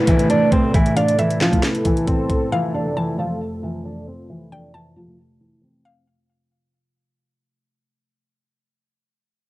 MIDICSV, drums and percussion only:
0, 0, Header, 1, 2, 480
1, 0, Start_track
1, 0, Tempo, 444444
1, 801, Time_signature, 4, 2, 24, 8
1, 10257, End_track
2, 0, Start_track
2, 0, Title_t, "Drums"
2, 78, Note_on_c, 9, 42, 81
2, 82, Note_on_c, 9, 36, 96
2, 186, Note_off_c, 9, 42, 0
2, 190, Note_off_c, 9, 36, 0
2, 207, Note_on_c, 9, 42, 62
2, 315, Note_off_c, 9, 42, 0
2, 322, Note_on_c, 9, 42, 64
2, 430, Note_off_c, 9, 42, 0
2, 561, Note_on_c, 9, 36, 89
2, 561, Note_on_c, 9, 42, 73
2, 669, Note_off_c, 9, 36, 0
2, 669, Note_off_c, 9, 42, 0
2, 802, Note_on_c, 9, 36, 111
2, 802, Note_on_c, 9, 42, 74
2, 910, Note_off_c, 9, 36, 0
2, 910, Note_off_c, 9, 42, 0
2, 927, Note_on_c, 9, 42, 49
2, 1035, Note_off_c, 9, 42, 0
2, 1043, Note_on_c, 9, 42, 76
2, 1151, Note_off_c, 9, 42, 0
2, 1171, Note_on_c, 9, 42, 63
2, 1279, Note_off_c, 9, 42, 0
2, 1281, Note_on_c, 9, 42, 64
2, 1389, Note_off_c, 9, 42, 0
2, 1409, Note_on_c, 9, 42, 61
2, 1517, Note_off_c, 9, 42, 0
2, 1523, Note_on_c, 9, 38, 97
2, 1525, Note_on_c, 9, 39, 79
2, 1631, Note_off_c, 9, 38, 0
2, 1633, Note_off_c, 9, 39, 0
2, 1649, Note_on_c, 9, 36, 93
2, 1653, Note_on_c, 9, 42, 60
2, 1757, Note_off_c, 9, 36, 0
2, 1760, Note_off_c, 9, 42, 0
2, 1760, Note_on_c, 9, 42, 76
2, 1761, Note_on_c, 9, 38, 118
2, 1764, Note_on_c, 9, 39, 95
2, 1868, Note_off_c, 9, 42, 0
2, 1869, Note_off_c, 9, 38, 0
2, 1872, Note_off_c, 9, 39, 0
2, 1887, Note_on_c, 9, 42, 52
2, 1995, Note_off_c, 9, 42, 0
2, 1998, Note_on_c, 9, 42, 79
2, 2002, Note_on_c, 9, 36, 97
2, 2106, Note_off_c, 9, 42, 0
2, 2110, Note_off_c, 9, 36, 0
2, 2127, Note_on_c, 9, 42, 64
2, 2235, Note_off_c, 9, 42, 0
2, 2241, Note_on_c, 9, 42, 66
2, 2242, Note_on_c, 9, 36, 86
2, 2349, Note_off_c, 9, 42, 0
2, 2350, Note_off_c, 9, 36, 0
2, 2480, Note_on_c, 9, 36, 92
2, 2480, Note_on_c, 9, 42, 74
2, 2588, Note_off_c, 9, 36, 0
2, 2588, Note_off_c, 9, 42, 0
2, 10257, End_track
0, 0, End_of_file